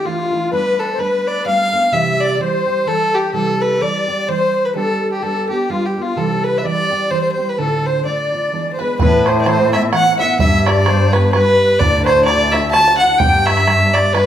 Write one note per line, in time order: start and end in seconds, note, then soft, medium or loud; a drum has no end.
0.04 0.31 E3 medium
0.04 0.31 A3 medium
0.04 0.30 D4 medium
0.04 0.30 E4 medium
0.04 0.16 F4 medium
0.04 0.52 F4 medium
0.18 0.33 F4 medium
0.18 0.20 G4 medium
0.31 0.51 E3 soft
0.31 0.51 A3 soft
0.31 0.52 D4 soft
0.31 0.51 E4 soft
0.31 0.36 E4 soft
0.36 0.51 F4 medium
0.51 0.98 G3 medium
0.51 0.98 A3 medium
0.51 0.98 B3 medium
0.51 0.99 D4 medium
0.51 0.90 B4 medium
0.51 0.80 B4 medium
0.79 1.01 A4 medium
0.93 0.99 C5 medium
0.98 1.45 G3 medium
0.98 1.45 A3 medium
0.98 1.46 B3 medium
0.98 1.46 D4 medium
0.98 1.48 B4 medium
0.98 1.29 B4 medium
1.27 1.46 D5 medium
1.45 1.73 G3 medium
1.45 1.73 A3 medium
1.45 1.72 B3 medium
1.45 1.71 D4 medium
1.45 1.94 F5 loud
1.45 1.95 F5 medium
1.72 1.92 A3 soft
1.72 1.93 B3 soft
1.72 1.93 D4 soft
1.92 2.40 C3 medium
1.92 2.37 E3 medium
1.92 2.39 G3 medium
1.92 2.39 C4 medium
1.92 2.40 G4 medium
1.92 2.21 E5 medium
1.92 2.22 E5 loud
2.20 2.34 D5 loud
2.20 2.39 D5 medium
2.34 2.42 D5 medium
2.39 2.66 E3 medium
2.39 2.67 G3 medium
2.39 2.66 C4 medium
2.39 2.65 G4 medium
2.39 2.89 C5 medium
2.66 2.86 G3 soft
2.66 2.86 C4 soft
2.66 2.87 G4 soft
2.86 3.32 E3 soft
2.86 3.33 G3 medium
2.86 3.33 C4 medium
2.86 3.34 G4 medium
2.86 3.15 A4 medium
2.86 3.15 A4 loud
3.14 3.33 G4 medium
3.14 3.35 G4 medium
3.33 3.81 C3 medium
3.33 3.79 E3 medium
3.33 3.81 G3 medium
3.33 3.81 C4 medium
3.33 3.82 G4 medium
3.33 3.62 A4 medium
3.33 3.83 A4 medium
3.61 3.83 B4 medium
3.80 4.08 E3 soft
3.80 4.08 G3 soft
3.80 4.08 C4 soft
3.80 4.07 G4 medium
3.80 4.30 D5 medium
4.08 4.28 G3 soft
4.08 4.29 C4 soft
4.08 4.28 G4 medium
4.28 4.75 E3 soft
4.28 4.75 G3 soft
4.28 4.75 C4 medium
4.28 4.76 G4 medium
4.28 4.66 C5 loud
4.28 4.67 C5 medium
4.65 4.74 B4 medium
4.65 4.75 B4 medium
4.75 5.22 G3 medium
4.75 5.22 B3 medium
4.75 5.22 D4 medium
4.75 5.24 G4 medium
4.75 5.10 A4 medium
5.12 5.24 G4 medium
5.12 5.23 G4 medium
5.21 5.50 G3 soft
5.21 5.50 B3 medium
5.21 5.49 D4 medium
5.21 5.48 G4 medium
5.21 5.50 A4 medium
5.21 5.49 A4 medium
5.48 5.69 B3 soft
5.48 5.70 D4 soft
5.48 5.70 G4 medium
5.48 5.71 G4 medium
5.69 5.97 G3 medium
5.69 5.97 B3 soft
5.69 5.96 D4 medium
5.69 5.84 F4 medium
5.69 5.87 F4 medium
5.69 5.95 G4 medium
5.85 6.03 G4 medium
5.97 6.16 B3 soft
5.97 6.17 D4 soft
5.97 6.15 F4 medium
5.97 6.16 G4 soft
6.01 6.19 F4 medium
6.16 6.64 C3 medium
6.16 6.62 E3 medium
6.16 6.63 G3 medium
6.16 6.64 C4 medium
6.16 6.64 G4 medium
6.16 6.45 A4 medium
6.44 6.59 B4 medium
6.44 6.65 B4 medium
6.58 6.66 E5 medium
6.63 6.91 E3 medium
6.63 6.91 G3 medium
6.63 6.90 C4 medium
6.63 6.89 G4 medium
6.63 7.12 D5 medium
6.63 7.12 D5 loud
6.90 7.10 G3 medium
6.90 7.11 C4 soft
6.90 7.11 G4 soft
7.11 7.38 E3 medium
7.11 7.38 G3 soft
7.11 7.37 C4 medium
7.11 7.29 C5 medium
7.11 7.21 C5 medium
7.22 7.31 C5 medium
7.30 7.48 C5 medium
7.30 7.50 C5 medium
7.37 7.58 G3 soft
7.37 7.58 C4 soft
7.37 7.58 G4 soft
7.48 7.57 B4 medium
7.48 7.60 B4 medium
7.58 8.05 D2 medium
7.58 8.05 A2 medium
7.58 8.03 D3 medium
7.58 8.04 A3 medium
7.58 8.05 D4 medium
7.58 8.05 F4 medium
7.58 7.86 A4 medium
7.58 7.87 A4 medium
7.86 8.04 C5 medium
7.86 8.06 C5 medium
8.05 8.32 D3 medium
8.05 8.32 A3 medium
8.05 8.32 D4 medium
8.05 8.31 F4 medium
8.05 8.68 D5 medium
8.05 8.75 D5 medium
8.32 8.52 D3 soft
8.32 8.52 A3 soft
8.32 8.53 D4 soft
8.32 8.52 F4 medium
8.52 8.79 E3 medium
8.52 8.79 G#3 soft
8.52 8.78 B3 medium
8.52 8.77 D4 medium
8.73 8.81 C5 medium
8.79 8.99 G#3 soft
8.79 8.98 B3 soft
8.79 8.99 D4 soft
8.79 8.98 B4 medium
8.79 8.99 B4 medium
8.98 9.46 A2 medium
8.98 10.23 A2 loud
8.98 9.44 E3 medium
8.98 9.46 B3 medium
8.98 9.46 C4 medium
8.98 9.46 E4 medium
8.98 9.28 B4 medium
8.98 9.27 B4 medium
8.98 9.24 B4 medium
8.98 bodhran medium
9.26 9.45 C5 medium
9.26 9.41 C5 medium
9.26 bodhran medium
9.41 9.48 D5 medium
9.45 9.73 E3 medium
9.45 9.73 B3 medium
9.45 9.72 C4 medium
9.45 9.71 E4 medium
9.45 9.92 C5 medium
9.45 9.71 C5 medium
9.45 9.72 C5 medium
9.45 bodhran medium
9.72 9.92 B3 soft
9.72 9.92 C4 medium
9.72 9.93 E4 medium
9.72 9.82 E5 medium
9.72 9.92 E5 medium
9.72 bodhran soft
9.92 10.20 E3 medium
9.92 10.20 B3 medium
9.92 10.19 C4 medium
9.92 10.19 F#5 medium
9.92 10.18 F#5 loud
9.92 10.37 F#5 medium
9.92 bodhran medium
10.19 10.39 B3 soft
10.19 10.40 C4 soft
10.19 10.40 E4 medium
10.19 10.38 E5 medium
10.19 10.39 E5 medium
10.39 11.64 G2 loud
10.39 10.86 G3 medium
10.39 10.86 B3 medium
10.39 10.88 D4 medium
10.39 10.87 G4 medium
10.39 10.58 E5 loud
10.39 10.65 E5 medium
10.39 10.68 E5 medium
10.39 bodhran medium
10.58 10.67 E5 medium
10.66 11.14 D5 medium
10.66 11.11 D5 medium
10.66 10.86 D5 medium
10.66 bodhran medium
10.86 11.14 G3 medium
10.86 11.14 B3 medium
10.86 11.14 D4 medium
10.86 11.14 C5 medium
10.86 bodhran medium
11.12 11.33 B3 soft
11.12 11.33 D4 soft
11.12 11.34 G4 medium
11.12 11.32 B4 medium
11.12 11.27 B4 medium
11.12 bodhran medium
11.29 11.80 B4 loud
11.29 11.34 C5 medium
11.33 11.80 G3 medium
11.33 11.81 B3 medium
11.33 11.81 D4 medium
11.33 11.81 G4 medium
11.33 11.77 B4 medium
11.33 11.82 B4 medium
11.33 bodhran medium
11.79 12.27 D2 medium
11.79 13.04 D2 loud
11.79 12.27 A2 medium
11.79 12.26 D3 medium
11.79 12.27 D4 medium
11.79 12.27 E4 medium
11.79 12.27 F#4 medium
11.79 12.05 D5 loud
11.79 12.01 D5 medium
11.79 12.05 D5 medium
11.79 bodhran medium
12.01 12.08 B4 medium
12.05 12.24 C5 loud
12.05 12.27 C5 medium
12.05 12.26 C5 medium
12.05 bodhran medium
12.25 12.54 D3 medium
12.25 12.54 D4 medium
12.25 12.53 E4 medium
12.25 12.53 D5 loud
12.25 12.55 D5 medium
12.25 12.52 D5 medium
12.25 bodhran medium
12.29 12.53 F#4 medium
12.52 12.73 D4 medium
12.52 12.74 E4 medium
12.52 12.74 F#4 medium
12.52 12.71 E5 medium
12.52 12.73 E5 medium
12.52 12.75 E5 medium
12.52 bodhran medium
12.56 12.73 D3 medium
12.71 13.01 D3 medium
12.71 13.00 D4 medium
12.71 12.97 A5 loud
12.71 12.79 A5 loud
12.71 13.02 A5 loud
12.71 bodhran medium
12.75 13.00 E4 medium
12.75 12.99 F#4 medium
12.80 12.86 A5 medium
12.88 13.00 A5 loud
12.98 13.21 E4 medium
12.98 13.21 F#4 medium
12.98 13.19 F#5 loud
13.02 13.20 D3 soft
13.02 13.20 D4 soft
13.02 13.20 F#5 loud
13.18 14.03 G2 loud
13.18 13.66 G3 medium
13.18 13.67 B3 medium
13.18 13.67 D4 medium
13.18 13.68 G4 medium
13.18 13.47 G5 loud
13.18 13.45 G5 medium
13.18 13.46 G5 medium
13.18 bodhran medium
13.46 13.95 E5 loud
13.46 13.91 E5 medium
13.46 13.96 E5 loud
13.46 bodhran medium
13.57 bodhran medium
13.67 14.13 G3 medium
13.67 14.13 B3 medium
13.67 14.14 D4 medium
13.67 14.14 G4 medium
13.67 bodhran medium
13.93 14.14 D5 loud
13.93 14.13 D5 medium
13.93 14.15 D5 medium
13.93 bodhran soft
14.13 14.26 G2 medium
14.13 14.26 G3 medium
14.13 14.26 B3 medium
14.13 14.26 D4 medium
14.13 14.26 G4 medium
14.13 14.26 B4 loud
14.13 14.26 B4 medium
14.13 bodhran medium